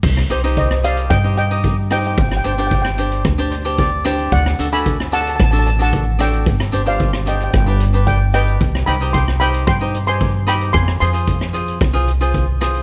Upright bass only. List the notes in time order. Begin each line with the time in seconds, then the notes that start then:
0.03 C2
0.30 C2
1.10 G2
2.18 G1
2.45 G1
3.25 D2
4.32 D2
4.59 D2
5.40 A1
6.46 G1
6.73 G1
7.53 G1
8.61 C2
8.87 C2
9.67 G2
10.74 F2
11.01 F2
11.81 C2